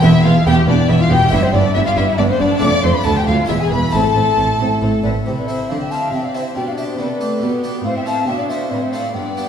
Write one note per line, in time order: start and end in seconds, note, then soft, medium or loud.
0.00 0.11 E1 loud
0.00 0.22 E2 medium
0.00 0.11 E2 loud
0.00 1.26 B3 medium
0.00 0.10 B3 medium
0.00 1.27 E4 medium
0.00 0.24 E4 loud
0.00 0.09 E5 loud
0.04 0.25 E5 loud
0.24 0.32 E1 medium
0.24 0.32 E2 medium
0.24 0.44 E2 medium
0.24 0.32 B3 medium
0.24 0.33 F4 loud
0.24 0.45 F5 medium
0.24 0.46 F5 loud
0.45 0.54 E1 medium
0.45 0.54 E2 medium
0.45 0.65 E2 medium
0.45 0.53 B3 medium
0.45 0.67 G4 loud
0.45 0.52 G5 loud
0.45 0.55 G5 loud
0.67 0.75 E1 medium
0.67 0.75 E2 medium
0.67 0.87 E2 medium
0.67 0.75 B3 medium
0.67 0.89 D4 medium
0.67 0.91 D5 medium
0.67 0.89 D5 loud
0.88 0.97 E1 medium
0.88 0.97 E2 medium
0.88 1.08 E2 medium
0.88 0.96 B3 medium
0.88 0.99 E4 medium
0.88 1.00 E5 loud
0.88 1.02 E5 medium
0.99 1.10 F4 medium
0.99 1.13 F5 medium
0.99 1.11 F5 loud
1.09 1.18 E1 medium
1.09 1.18 E2 medium
1.09 1.30 E2 medium
1.09 1.18 B3 medium
1.09 1.31 G4 loud
1.09 1.32 G5 loud
1.09 1.31 G5 medium
1.27 2.56 B3 medium
1.27 1.39 B3 medium
1.27 2.57 E4 medium
1.32 1.40 G1 medium
1.32 1.40 G2 medium
1.32 1.51 G2 medium
1.32 1.42 E4 loud
1.32 1.44 E5 loud
1.32 1.43 E5 loud
1.43 1.53 C4 medium
1.43 1.55 C5 medium
1.43 1.54 C5 medium
1.53 1.61 G1 medium
1.53 1.61 G2 medium
1.53 1.73 G2 medium
1.53 1.61 B3 medium
1.53 1.75 D4 medium
1.53 1.77 D5 medium
1.53 1.75 D5 medium
1.74 1.83 G1 medium
1.74 1.83 G2 medium
1.74 1.94 G2 medium
1.74 1.83 B3 medium
1.74 1.79 E4 loud
1.74 1.79 E5 loud
1.74 1.88 E5 loud
1.86 1.96 F4 medium
1.86 1.99 F5 medium
1.86 1.91 F5 loud
1.96 2.05 G1 medium
1.96 2.04 G2 medium
1.96 2.16 G2 medium
1.96 2.04 B3 medium
1.96 2.18 E4 medium
1.96 2.04 E5 medium
1.96 2.20 E5 medium
2.18 2.26 G1 medium
2.18 2.26 G2 medium
2.18 2.38 G2 medium
2.18 2.26 B3 medium
2.18 2.29 D4 medium
2.18 2.23 D5 loud
2.18 2.29 D5 medium
2.29 2.40 C4 medium
2.29 2.42 C5 medium
2.29 2.40 C5 loud
2.40 2.48 G1 medium
2.40 2.48 G2 medium
2.40 2.60 G2 medium
2.40 2.48 B3 medium
2.40 2.62 D4 loud
2.40 2.62 D5 loud
2.40 2.61 D5 medium
2.58 2.70 F2 medium
2.58 2.99 A3 medium
2.58 2.69 A3 medium
2.58 3.03 C4 medium
2.58 3.02 F4 medium
2.58 2.83 D5 loud
2.58 2.67 D6 loud
2.58 2.83 D6 loud
2.62 2.70 F1 medium
2.62 2.82 F2 medium
2.83 2.92 F1 medium
2.83 2.91 F2 medium
2.83 3.03 F2 medium
2.83 2.91 A3 medium
2.83 2.94 C5 medium
2.83 2.95 C6 medium
2.83 2.94 C6 medium
2.94 3.05 B4 medium
2.94 3.07 B5 medium
2.94 3.06 B5 medium
3.01 3.45 A3 medium
3.01 3.45 B3 medium
3.01 3.47 F4 medium
3.01 3.09 A4 medium
3.05 3.13 D2 medium
3.05 3.25 D2 medium
3.05 3.13 D2 medium
3.05 3.13 A3 medium
3.05 3.16 A5 loud
3.05 3.16 A5 medium
3.15 3.27 G4 medium
3.15 3.27 G5 medium
3.26 3.35 D2 medium
3.26 3.47 D2 medium
3.26 3.35 D2 medium
3.26 3.35 A3 medium
3.26 3.48 F4 medium
3.26 3.34 F5 loud
3.26 3.48 F5 medium
3.45 3.89 G#3 medium
3.45 3.90 B3 medium
3.45 3.91 E4 medium
3.45 3.60 E4 medium
3.45 3.53 E5 loud
3.49 3.57 E1 medium
3.49 3.57 E2 medium
3.49 3.69 E2 medium
3.49 3.57 G#3 medium
3.49 3.61 E5 medium
3.60 3.70 G#4 medium
3.60 3.70 G#5 medium
3.60 3.71 G#5 medium
3.70 3.79 E1 medium
3.70 3.79 E2 medium
3.70 3.91 E2 medium
3.70 3.79 G#3 medium
3.70 3.93 B4 medium
3.70 3.92 B5 medium
3.70 3.94 B5 medium
3.89 5.20 A3 medium
3.89 5.20 C4 medium
3.89 5.21 E4 medium
3.89 5.01 A4 medium
3.89 4.73 A5 medium
3.93 4.01 A1 medium
3.93 4.01 A2 medium
3.93 4.13 A2 medium
3.93 4.01 C4 medium
3.93 5.04 A5 loud
4.15 4.23 A1 medium
4.15 4.23 A2 medium
4.15 4.35 A2 medium
4.15 4.24 C4 medium
4.37 4.45 A1 medium
4.37 4.45 A2 medium
4.37 4.57 A2 medium
4.37 4.46 C4 medium
4.59 4.67 A1 medium
4.59 4.79 A2 medium
4.59 4.67 A2 medium
4.59 4.67 C4 medium
4.81 4.89 A1 medium
4.81 4.89 A2 medium
4.81 5.01 A2 medium
4.81 4.90 C4 medium
5.03 5.12 A1 medium
5.03 5.24 A2 medium
5.03 5.12 A2 medium
5.03 5.12 C4 medium
5.03 5.12 B4 medium
5.03 5.09 D5 medium
5.25 5.66 C3 medium
5.25 5.66 C3 soft
5.25 5.67 E4 soft
5.25 5.31 G4 soft
5.25 5.66 A4 soft
5.25 5.36 C5 medium
5.37 5.48 B4 soft
5.37 5.49 D5 soft
5.47 5.79 C4 soft
5.47 5.80 E4 soft
5.47 5.69 C5 soft
5.47 5.71 E5 medium
5.69 6.10 D3 medium
5.69 6.09 D3 soft
5.69 6.56 C4 soft
5.69 6.54 G4 soft
5.69 5.80 D5 medium
5.69 5.80 F5 medium
5.81 5.91 E5 soft
5.81 5.93 G5 medium
5.91 6.22 C4 soft
5.91 6.23 E4 soft
5.91 6.13 F5 medium
5.91 6.12 A5 medium
6.13 6.52 C3 medium
6.13 6.52 C3 soft
6.13 6.24 E5 medium
6.13 6.26 G5 medium
6.24 6.34 D5 medium
6.24 6.34 F5 medium
6.35 6.50 C4 soft
6.35 6.50 E4 soft
6.35 6.56 C5 medium
6.35 6.41 E5 medium
6.55 6.94 B2 soft
6.55 6.95 B2 medium
6.55 6.97 D4 soft
6.55 6.97 G4 soft
6.55 6.66 D5 medium
6.55 6.66 G5 medium
6.67 6.77 D5 medium
6.67 6.72 F5 medium
6.77 7.08 D4 soft
6.77 7.09 G4 soft
6.77 6.98 C5 medium
6.77 6.84 E5 medium
6.98 7.38 C3 soft
6.98 7.39 C3 medium
6.98 7.06 B3 medium
6.98 7.41 A4 medium
6.98 7.52 B4 medium
6.98 7.51 D5 medium
7.20 7.41 A3 medium
7.20 7.51 D4 soft
7.20 7.52 G4 soft
7.41 7.81 B2 medium
7.41 7.81 B2 soft
7.41 7.84 B3 medium
7.41 7.85 G4 soft
7.64 7.79 D4 soft
7.64 7.79 G4 soft
7.84 8.23 A2 soft
7.84 8.24 A2 medium
7.84 8.27 C4 medium
7.84 8.28 F4 soft
7.84 7.95 C5 medium
7.84 7.95 F5 medium
7.95 8.06 E5 medium
7.95 8.01 G5 medium
8.06 8.37 A3 soft
8.06 8.37 C4 soft
8.06 8.38 F4 soft
8.06 8.28 F5 medium
8.06 8.26 A5 medium
8.27 8.68 B2 medium
8.27 8.67 B2 soft
8.27 8.71 D4 soft
8.27 9.15 E4 medium
8.27 8.38 E5 medium
8.27 8.32 G5 medium
8.38 8.43 D5 medium
8.38 8.51 F5 medium
8.49 8.81 A3 soft
8.49 8.81 C4 soft
8.49 8.81 F4 soft
8.49 8.70 C5 medium
8.49 8.72 E5 medium
8.70 9.11 A2 medium
8.70 9.11 A2 soft
8.70 9.14 C4 soft
8.70 8.81 B4 medium
8.70 8.84 D5 medium
8.81 8.92 C5 medium
8.81 8.92 E5 medium
8.93 9.09 A3 soft
8.93 9.09 C4 soft
8.93 9.09 F4 soft
8.93 9.14 D5 medium
8.93 9.16 F5 medium
9.14 9.49 G2 soft
9.14 9.49 G2 medium
9.14 9.49 B3 soft
9.14 9.49 D4 soft
9.14 9.49 D5 medium
9.14 9.49 G5 medium
9.37 9.49 B3 soft
9.37 9.49 D4 soft
9.37 9.49 G4 soft